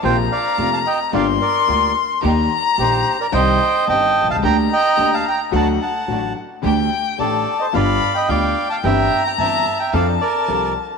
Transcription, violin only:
\new Staff \with { instrumentName = "Violin" } { \time 4/4 \key g \minor \tempo 4 = 109 bes''2 c'''2 | bes''2 g''4 a''4 | bes''2 fis''4. r8 | g''4 a''4 b''4 g''4 |
bes''2 a''2 | }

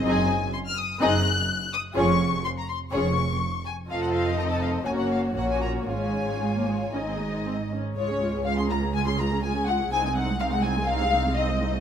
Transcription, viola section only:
\new Staff \with { instrumentName = "Viola section" } { \time 4/4 \key des \major \tempo 4 = 124 << { ees'8 r4. ees'8 r4. | f'8 r4. f'8 r4. | f'4 ees'4 des'4 des'4 | des'4 aes16 bes16 aes8 des'16 c'16 aes8 c'8 des'8 |
f'16 aes'16 f'16 aes'16 f'16 aes'16 f'16 aes'16 f'16 aes'16 f'16 aes'16 f'16 aes'16 f'16 aes'16 | ees'16 c'16 ees'16 c'16 ees'16 c'16 ees'16 c'16 ees'16 c'16 ees'16 c'16 ees'16 c'16 ees'16 c'16 | } \\ { c'8 r4. c'8 r4. | des'8 r4. des'8 r4. | c'2 bes4 bes4 | aes4 r2. |
aes16 des'16 aes16 des'16 aes16 des'16 aes16 des'16 aes16 des'16 aes16 des'16 aes16 des'16 aes16 des'16 | c'16 aes16 c'16 aes16 c'16 aes16 c'16 aes16 c'16 aes16 c'16 aes16 c'16 aes16 c'16 aes16 | } >> }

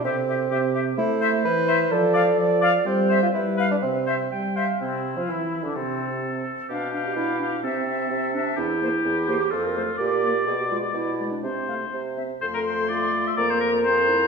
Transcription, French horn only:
\new Staff \with { instrumentName = "French horn" } { \time 2/4 \key c \major \tempo 4 = 127 c4 c4 | a4 e4 | f4 f4 | g4 g4 |
c4 g4 | c8. f16 e8. d16 | c4. r8 | d'8 d'8 d'8 d'8 |
c'8 c'8 c'8 c'8 | \key f \major r8 bes8 r8 bes8 | r8 a8 r8 bes8 | r8 gis8 r8 gis8 |
r8 a8 r8 c'8 | a'4 f'4 | bes'2 | }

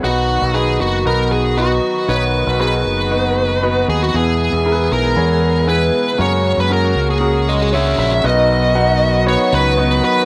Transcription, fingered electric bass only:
\new Staff \with { instrumentName = "Fingered electric bass" } { \clef bass \time 4/4 \key b \major \tempo 4 = 117 b,,8. b,,8. fis,,8 b,,4. r8 | b,,8. b,,8. fis,,2 dis,8 | e,8. e,8. b,,8 e,4. r8 | fis,8. fis,8. cis,2 ais,,8 |
b,,2~ b,,16 r16 cis,4 r8 | }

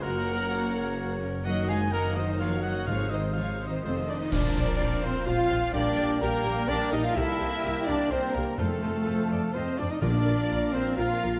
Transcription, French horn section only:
\new Staff \with { instrumentName = "French horn section" } { \time 3/4 \key ees \dorian \tempo 4 = 126 << { ges'2. | ees'4 ees'2 | ees'2 <c' f'>8 d'16 ees'16 | \key bes \major d'4. c'8 f'4 |
d'4 bes4 d'8 ees'16 f'16 | e'4. d'8 c'8 bes8 | a2 c'8 d'16 ees'16 | d'4. c'8 f'4 | } \\ { des'2 des'4 | bes4 bes2 | c2 c'8 r8 | r2. |
r2. | r2. | r2. | r2. | } >> }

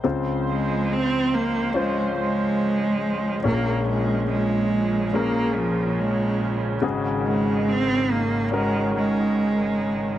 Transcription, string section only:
\new Staff \with { instrumentName = "String section" } { \clef bass \time 4/4 \key des \major \tempo 4 = 71 << { c''1 | des1~ | des1 | } \\ { <des, des f>1 | <bes, aes>1 | <aes, ees aes>1 | } >> }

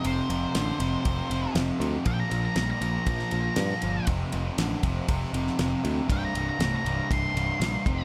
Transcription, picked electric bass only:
\new Staff \with { instrumentName = "Picked electric bass" } { \clef bass \time 4/4 \key f \major \tempo 4 = 119 f,,8 f,,8 a,,8 f,,8 f,,8 f,,8 f,,8 d,8 | bes,,8 bes,,8 bes,,8 bes,,8 bes,,8 bes,,8 g,8 g,,8 | f,,8 f,,8 a,,8 f,,8 f,,8 f,,8 f,,8 d,8 | c,,8 c,,8 c,,8 c,,8 c,,8 c,,8 bes,,8 f,,8 | }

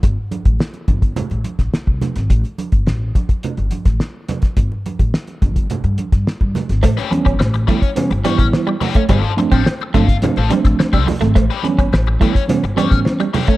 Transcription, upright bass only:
\new Staff \with { instrumentName = "Upright bass" } { \clef bass \time 4/4 \key g \lydian \tempo 4 = 106 g,,16 r8 a,,16 r8 g,,8 r16 a,,16 r16 a,,16 r16 c,16 r16 gis,,16 | a,,16 r8 g,,16 a,,8 r8. g,,16 r16 a,,16 r4 | g,,16 r8 a,,16 r8 g,,8 r16 g,16 r16 g,16 r16 g,16 r16 gis,,16 | a,,16 r8 g,,16 a,,8 r8. g,,16 r16 a,,16 r4 |
g,,16 r8 a,,16 r8 g,,8 r16 a,,16 r16 a,,16 r16 c,16 r16 gis,,16 | a,,16 r8 g,,16 a,,8 r8. g,,16 r16 a,,16 r4 | }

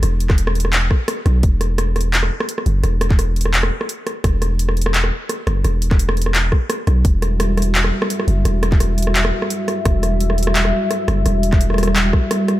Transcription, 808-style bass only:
\new Staff \with { instrumentName = "808-style bass" } { \clef bass \time 4/4 \key e \minor \tempo 4 = 171 e,,2~ e,,8 r4 b,,8 | e,,2~ e,,8 r4 fis,,8 | e,,2~ e,,8 r4. | e,,2~ e,,8 r4 fis,,8 |
e,,2~ e,,8 r4 b,,8 | e,,2~ e,,8 r4 fis,,8 | e,,2~ e,,8 r4. | e,,2~ e,,8 r4 fis,,8 |
e,,2~ e,,8 r4. | }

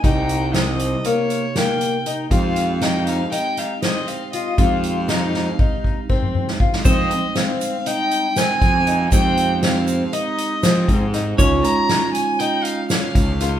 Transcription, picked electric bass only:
\new Staff \with { instrumentName = "Picked electric bass" } { \clef bass \time 9/8 \key f \minor \tempo 4. = 79 c,2 r2 r8 | f,2 r2 r8 | f,2 r2 r8 | f,8 r2. f,4 |
f,2 r4 f8 aes,4 | des,8 r2. des,4 | }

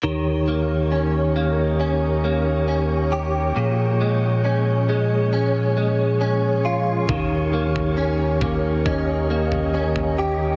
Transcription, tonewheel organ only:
<<
  \new Staff \with { instrumentName = "Tonewheel organ" } { \time 4/4 \key ees \mixolydian \tempo 4 = 68 des''1~ | des''1~ | des''2 ees''2 | }
  \new Staff \with { instrumentName = "Tonewheel organ" } { \clef bass \time 4/4 \key ees \mixolydian <ees, ees g'>1 | <bes, f aes'>1 | <ees, ees g'>1 | }
>>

